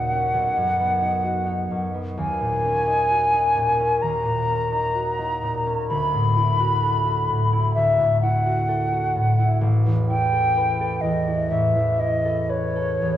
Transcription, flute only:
0, 0, Header, 1, 2, 480
1, 0, Start_track
1, 0, Tempo, 918836
1, 1143, Time_signature, 4, 2, 24, 8
1, 2103, Tempo, 931677
1, 4983, Tempo, 944882
1, 5943, Tempo, 1001669
1, 6741, End_track
2, 0, Start_track
2, 0, Title_t, "Flute"
2, 0, Program_c, 0, 73
2, 0, Note_on_c, 0, 78, 55
2, 1001, Note_off_c, 0, 78, 0
2, 1144, Note_on_c, 0, 80, 72
2, 2100, Note_on_c, 0, 82, 58
2, 2108, Note_off_c, 0, 80, 0
2, 3056, Note_off_c, 0, 82, 0
2, 3060, Note_on_c, 0, 83, 72
2, 4007, Note_off_c, 0, 83, 0
2, 4019, Note_on_c, 0, 76, 56
2, 4258, Note_off_c, 0, 76, 0
2, 4261, Note_on_c, 0, 78, 55
2, 4966, Note_off_c, 0, 78, 0
2, 5220, Note_on_c, 0, 79, 60
2, 5693, Note_on_c, 0, 75, 52
2, 5701, Note_off_c, 0, 79, 0
2, 5942, Note_on_c, 0, 76, 47
2, 5949, Note_off_c, 0, 75, 0
2, 6177, Note_on_c, 0, 75, 54
2, 6184, Note_off_c, 0, 76, 0
2, 6418, Note_on_c, 0, 73, 52
2, 6425, Note_off_c, 0, 75, 0
2, 6741, Note_off_c, 0, 73, 0
2, 6741, End_track
0, 0, End_of_file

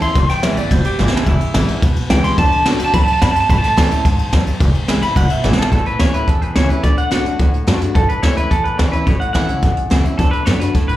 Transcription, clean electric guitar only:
0, 0, Header, 1, 2, 480
1, 0, Start_track
1, 0, Key_signature, 3, "major"
1, 0, Tempo, 278681
1, 276, Time_signature, 4, 2, 24, 8
1, 18888, End_track
2, 0, Start_track
2, 0, Title_t, "Clean electric guitar"
2, 0, Program_c, 0, 27
2, 34, Note_on_c, 0, 84, 117
2, 500, Note_off_c, 0, 84, 0
2, 511, Note_on_c, 0, 79, 104
2, 758, Note_off_c, 0, 79, 0
2, 758, Note_on_c, 0, 76, 85
2, 989, Note_off_c, 0, 76, 0
2, 989, Note_on_c, 0, 74, 88
2, 1236, Note_off_c, 0, 74, 0
2, 1236, Note_on_c, 0, 72, 125
2, 1467, Note_off_c, 0, 72, 0
2, 1472, Note_on_c, 0, 67, 99
2, 1719, Note_off_c, 0, 67, 0
2, 1719, Note_on_c, 0, 64, 98
2, 1956, Note_off_c, 0, 64, 0
2, 1956, Note_on_c, 0, 62, 95
2, 2190, Note_off_c, 0, 62, 0
2, 2190, Note_on_c, 0, 64, 111
2, 3120, Note_off_c, 0, 64, 0
2, 3622, Note_on_c, 0, 79, 100
2, 3858, Note_off_c, 0, 79, 0
2, 3861, Note_on_c, 0, 84, 114
2, 4097, Note_off_c, 0, 84, 0
2, 4110, Note_on_c, 0, 81, 122
2, 4573, Note_off_c, 0, 81, 0
2, 4900, Note_on_c, 0, 81, 109
2, 5058, Note_off_c, 0, 81, 0
2, 5069, Note_on_c, 0, 83, 111
2, 5222, Note_off_c, 0, 83, 0
2, 5229, Note_on_c, 0, 81, 104
2, 5370, Note_off_c, 0, 81, 0
2, 5390, Note_on_c, 0, 81, 106
2, 5541, Note_off_c, 0, 81, 0
2, 5548, Note_on_c, 0, 83, 96
2, 5697, Note_off_c, 0, 83, 0
2, 5704, Note_on_c, 0, 81, 105
2, 5841, Note_off_c, 0, 81, 0
2, 5861, Note_on_c, 0, 81, 100
2, 6024, Note_off_c, 0, 81, 0
2, 6024, Note_on_c, 0, 83, 109
2, 6167, Note_off_c, 0, 83, 0
2, 6174, Note_on_c, 0, 81, 98
2, 6317, Note_off_c, 0, 81, 0
2, 6338, Note_on_c, 0, 81, 115
2, 7734, Note_off_c, 0, 81, 0
2, 8655, Note_on_c, 0, 83, 106
2, 8889, Note_off_c, 0, 83, 0
2, 8897, Note_on_c, 0, 78, 108
2, 9142, Note_off_c, 0, 78, 0
2, 9142, Note_on_c, 0, 76, 91
2, 9372, Note_off_c, 0, 76, 0
2, 9372, Note_on_c, 0, 73, 93
2, 9608, Note_off_c, 0, 73, 0
2, 9612, Note_on_c, 0, 69, 105
2, 9839, Note_off_c, 0, 69, 0
2, 9860, Note_on_c, 0, 69, 94
2, 10094, Note_off_c, 0, 69, 0
2, 10101, Note_on_c, 0, 71, 97
2, 10323, Note_off_c, 0, 71, 0
2, 10337, Note_on_c, 0, 73, 79
2, 10577, Note_on_c, 0, 71, 79
2, 10585, Note_off_c, 0, 73, 0
2, 10809, Note_off_c, 0, 71, 0
2, 10809, Note_on_c, 0, 69, 92
2, 11053, Note_off_c, 0, 69, 0
2, 11053, Note_on_c, 0, 71, 90
2, 11284, Note_off_c, 0, 71, 0
2, 11291, Note_on_c, 0, 73, 94
2, 11535, Note_off_c, 0, 73, 0
2, 11535, Note_on_c, 0, 71, 96
2, 11770, Note_on_c, 0, 74, 89
2, 11786, Note_off_c, 0, 71, 0
2, 11999, Note_off_c, 0, 74, 0
2, 12019, Note_on_c, 0, 78, 96
2, 12234, Note_off_c, 0, 78, 0
2, 12255, Note_on_c, 0, 78, 94
2, 13393, Note_off_c, 0, 78, 0
2, 13687, Note_on_c, 0, 69, 85
2, 13933, Note_on_c, 0, 71, 84
2, 13945, Note_off_c, 0, 69, 0
2, 14161, Note_off_c, 0, 71, 0
2, 14167, Note_on_c, 0, 73, 90
2, 14410, Note_off_c, 0, 73, 0
2, 14417, Note_on_c, 0, 71, 90
2, 14651, Note_on_c, 0, 69, 95
2, 14671, Note_off_c, 0, 71, 0
2, 14883, Note_on_c, 0, 71, 86
2, 14908, Note_off_c, 0, 69, 0
2, 15120, Note_off_c, 0, 71, 0
2, 15120, Note_on_c, 0, 73, 98
2, 15353, Note_off_c, 0, 73, 0
2, 15360, Note_on_c, 0, 71, 87
2, 15604, Note_off_c, 0, 71, 0
2, 15604, Note_on_c, 0, 73, 91
2, 15844, Note_on_c, 0, 78, 100
2, 15866, Note_off_c, 0, 73, 0
2, 16053, Note_off_c, 0, 78, 0
2, 16073, Note_on_c, 0, 78, 96
2, 17227, Note_off_c, 0, 78, 0
2, 17528, Note_on_c, 0, 69, 79
2, 17752, Note_off_c, 0, 69, 0
2, 17759, Note_on_c, 0, 71, 86
2, 18001, Note_off_c, 0, 71, 0
2, 18008, Note_on_c, 0, 73, 75
2, 18256, Note_off_c, 0, 73, 0
2, 18256, Note_on_c, 0, 71, 89
2, 18490, Note_off_c, 0, 71, 0
2, 18490, Note_on_c, 0, 69, 91
2, 18732, Note_off_c, 0, 69, 0
2, 18739, Note_on_c, 0, 71, 88
2, 18888, Note_off_c, 0, 71, 0
2, 18888, End_track
0, 0, End_of_file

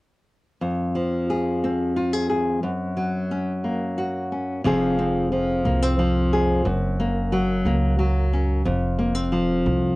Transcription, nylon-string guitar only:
0, 0, Header, 1, 2, 480
1, 0, Start_track
1, 0, Tempo, 668896
1, 448, Time_signature, 6, 3, 24, 8
1, 7145, End_track
2, 0, Start_track
2, 0, Title_t, "Nylon-string guitar"
2, 0, Program_c, 0, 24
2, 441, Note_on_c, 0, 41, 54
2, 684, Note_on_c, 0, 53, 48
2, 932, Note_on_c, 0, 68, 51
2, 1174, Note_on_c, 0, 60, 43
2, 1407, Note_off_c, 0, 68, 0
2, 1410, Note_on_c, 0, 65, 47
2, 1530, Note_off_c, 0, 65, 0
2, 1530, Note_on_c, 0, 68, 36
2, 1642, Note_off_c, 0, 68, 0
2, 1650, Note_on_c, 0, 68, 43
2, 1862, Note_off_c, 0, 68, 0
2, 1865, Note_off_c, 0, 60, 0
2, 1887, Note_off_c, 0, 41, 0
2, 1889, Note_off_c, 0, 53, 0
2, 1890, Note_on_c, 0, 42, 52
2, 2131, Note_on_c, 0, 54, 49
2, 2377, Note_on_c, 0, 61, 49
2, 2613, Note_on_c, 0, 58, 46
2, 2855, Note_on_c, 0, 66, 49
2, 3090, Note_off_c, 0, 61, 0
2, 3099, Note_on_c, 0, 61, 48
2, 3303, Note_off_c, 0, 42, 0
2, 3303, Note_off_c, 0, 54, 0
2, 3305, Note_off_c, 0, 66, 0
2, 3307, Note_off_c, 0, 61, 0
2, 3330, Note_on_c, 0, 41, 64
2, 3333, Note_off_c, 0, 58, 0
2, 3335, Note_on_c, 0, 53, 49
2, 3338, Note_on_c, 0, 60, 48
2, 3344, Note_on_c, 0, 68, 54
2, 3568, Note_off_c, 0, 60, 0
2, 3577, Note_on_c, 0, 60, 49
2, 3807, Note_off_c, 0, 53, 0
2, 3816, Note_on_c, 0, 53, 56
2, 4052, Note_off_c, 0, 60, 0
2, 4055, Note_on_c, 0, 58, 48
2, 4179, Note_off_c, 0, 58, 0
2, 4179, Note_on_c, 0, 60, 45
2, 4288, Note_off_c, 0, 53, 0
2, 4297, Note_on_c, 0, 53, 51
2, 4533, Note_off_c, 0, 68, 0
2, 4541, Note_on_c, 0, 68, 55
2, 4748, Note_off_c, 0, 68, 0
2, 4770, Note_off_c, 0, 41, 0
2, 4773, Note_on_c, 0, 42, 65
2, 4774, Note_off_c, 0, 53, 0
2, 4775, Note_off_c, 0, 60, 0
2, 5022, Note_on_c, 0, 58, 49
2, 5255, Note_on_c, 0, 54, 57
2, 5490, Note_off_c, 0, 58, 0
2, 5499, Note_on_c, 0, 58, 51
2, 5723, Note_off_c, 0, 54, 0
2, 5731, Note_on_c, 0, 54, 55
2, 5978, Note_on_c, 0, 61, 49
2, 6182, Note_off_c, 0, 42, 0
2, 6182, Note_off_c, 0, 54, 0
2, 6185, Note_off_c, 0, 61, 0
2, 6208, Note_on_c, 0, 41, 64
2, 6214, Note_off_c, 0, 58, 0
2, 6448, Note_on_c, 0, 58, 52
2, 6564, Note_off_c, 0, 58, 0
2, 6564, Note_on_c, 0, 60, 45
2, 6688, Note_on_c, 0, 53, 60
2, 7145, Note_off_c, 0, 41, 0
2, 7145, Note_off_c, 0, 53, 0
2, 7145, Note_off_c, 0, 60, 0
2, 7145, End_track
0, 0, End_of_file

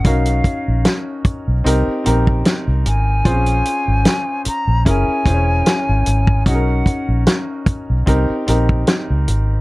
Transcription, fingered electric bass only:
0, 0, Header, 1, 3, 480
1, 0, Start_track
1, 0, Tempo, 801710
1, 29, Time_signature, 4, 2, 24, 8
1, 5753, End_track
2, 0, Start_track
2, 0, Title_t, "Fingered electric bass"
2, 0, Program_c, 0, 33
2, 30, Note_on_c, 0, 35, 84
2, 241, Note_off_c, 0, 35, 0
2, 408, Note_on_c, 0, 34, 72
2, 501, Note_off_c, 0, 34, 0
2, 885, Note_on_c, 0, 35, 71
2, 979, Note_off_c, 0, 35, 0
2, 993, Note_on_c, 0, 36, 85
2, 1105, Note_off_c, 0, 36, 0
2, 1237, Note_on_c, 0, 34, 76
2, 1444, Note_off_c, 0, 34, 0
2, 1603, Note_on_c, 0, 36, 75
2, 1698, Note_off_c, 0, 36, 0
2, 1714, Note_on_c, 0, 32, 75
2, 1923, Note_off_c, 0, 32, 0
2, 1950, Note_on_c, 0, 34, 95
2, 2161, Note_off_c, 0, 34, 0
2, 2322, Note_on_c, 0, 32, 75
2, 2418, Note_off_c, 0, 32, 0
2, 2799, Note_on_c, 0, 34, 69
2, 2896, Note_off_c, 0, 34, 0
2, 2914, Note_on_c, 0, 30, 84
2, 3026, Note_off_c, 0, 30, 0
2, 3147, Note_on_c, 0, 28, 75
2, 3359, Note_off_c, 0, 28, 0
2, 3527, Note_on_c, 0, 32, 72
2, 3621, Note_off_c, 0, 32, 0
2, 3635, Note_on_c, 0, 32, 81
2, 3844, Note_off_c, 0, 32, 0
2, 3870, Note_on_c, 0, 35, 88
2, 4081, Note_off_c, 0, 35, 0
2, 4242, Note_on_c, 0, 34, 77
2, 4338, Note_off_c, 0, 34, 0
2, 4729, Note_on_c, 0, 35, 62
2, 4822, Note_off_c, 0, 35, 0
2, 4835, Note_on_c, 0, 36, 89
2, 4946, Note_off_c, 0, 36, 0
2, 5079, Note_on_c, 0, 34, 76
2, 5286, Note_off_c, 0, 34, 0
2, 5450, Note_on_c, 0, 37, 72
2, 5542, Note_off_c, 0, 37, 0
2, 5557, Note_on_c, 0, 32, 74
2, 5753, Note_off_c, 0, 32, 0
2, 5753, End_track
3, 0, Start_track
3, 0, Title_t, "Muted fingered electric bass strokes"
3, 748, Note_on_c, 9, 29, 40
3, 807, Note_off_c, 9, 29, 0
3, 2671, Note_on_c, 9, 29, 43
3, 2731, Note_off_c, 9, 29, 0
3, 4590, Note_on_c, 9, 29, 38
3, 4650, Note_off_c, 9, 29, 0
3, 4968, Note_on_c, 9, 29, 39
3, 5028, Note_off_c, 9, 29, 0
3, 5753, End_track
0, 0, End_of_file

